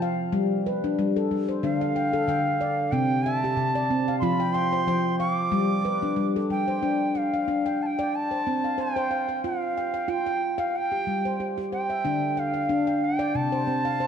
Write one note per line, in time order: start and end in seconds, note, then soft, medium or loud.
0.00 0.21 F3 medium
0.00 0.04 F5 medium
0.00 0.19 G5 medium
0.33 0.85 G3 loud
0.66 1.16 B4 medium
0.84 1.16 D4 medium
0.99 1.30 G3 medium
1.16 1.64 A4 medium
1.31 1.64 G3 medium
1.49 1.81 C5 medium
1.63 1.90 D3 medium
1.63 1.96 D4 medium
1.63 2.93 F5 medium
1.81 2.29 F5 medium
1.96 2.28 G5 medium
2.13 2.46 A4 medium
2.28 2.80 D3 medium
2.28 2.79 G5 medium
2.61 2.63 D5 medium
2.92 3.45 C3 loud
2.92 3.26 C4 medium
2.92 3.25 G5 loud
3.24 3.76 E5 medium
3.24 3.36 G#5 medium
3.36 4.19 A5 medium
3.44 3.76 G4 medium
3.57 4.10 C3 medium
3.75 4.23 D5 medium
3.90 4.23 C4 medium
4.08 4.41 F5 medium
4.19 4.49 F3 medium
4.19 4.55 F4 medium
4.19 4.55 B5 loud
4.19 4.24 C6 medium
4.40 4.53 G5 medium
4.53 4.87 G5 medium
4.53 5.19 C6 loud
4.73 5.05 C5 medium
4.87 5.40 F3 medium
4.87 5.38 G5 medium
5.19 5.22 F5 medium
5.19 5.32 C#6 loud
5.32 6.26 D6 loud
5.52 6.05 G3 loud
5.85 6.35 B4 medium
6.02 6.35 D4 medium
6.16 6.49 G3 medium
6.36 6.83 A4 medium
6.50 6.83 G3 medium
6.50 7.18 G5 medium
6.68 7.00 C5 medium
6.83 7.15 D4 medium
7.15 7.84 F5 medium
7.15 7.65 G5 medium
7.34 7.81 F5 medium
7.48 7.81 D4 medium
7.66 7.97 G5 medium
7.82 7.87 A5 medium
7.86 8.17 G5 medium
7.99 8.14 D5 medium
7.99 8.31 G5 medium
8.15 8.83 A5 medium
8.31 8.77 C5 medium
8.47 8.79 C4 medium
8.64 9.10 F5 soft
8.78 8.95 C5 medium
8.78 9.45 G5 medium
8.96 9.29 C5 medium
9.11 9.61 F5 medium
9.29 9.61 G5 medium
9.44 9.77 F4 medium
9.44 10.11 F5 medium
9.77 9.93 G5 medium
9.94 10.25 G5 medium
10.08 10.41 F4 medium
10.08 10.61 G5 medium
10.26 10.57 G5 medium
10.58 10.74 F5 medium
10.58 10.78 F5 medium
10.58 10.91 G5 medium
10.76 11.46 G5 medium
10.92 11.39 G4 medium
11.07 11.39 G3 medium
11.25 11.71 C5 medium
11.40 11.56 G4 medium
11.58 11.90 G4 medium
11.72 12.22 C5 medium
11.72 12.41 G5 medium
11.90 12.22 E5 soft
12.05 13.10 D3 medium
12.05 12.37 D4 medium
12.37 13.06 F5 medium
12.37 12.86 G5 medium
12.54 13.02 F5 soft
12.69 13.02 D4 medium
12.87 13.18 G5 medium
13.04 13.37 G5 medium
13.19 13.34 D5 medium
13.19 13.52 G5 medium
13.35 14.07 C3 medium
13.35 14.07 A5 medium
13.52 13.99 C5 medium
13.67 14.00 C4 medium
13.85 14.07 F5 medium
14.00 14.07 C5 medium